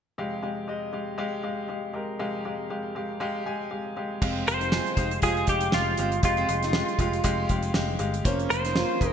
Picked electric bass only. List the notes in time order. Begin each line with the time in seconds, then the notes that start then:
4.22 F1
4.47 F1
4.97 F1
5.23 F1
5.48 F1
5.73 F1
5.98 G1
6.23 F1
6.49 F1
6.99 F1
7.25 F1
7.50 F1
7.75 F1
8.00 G1
8.25 F1
8.50 F1
9.01 F1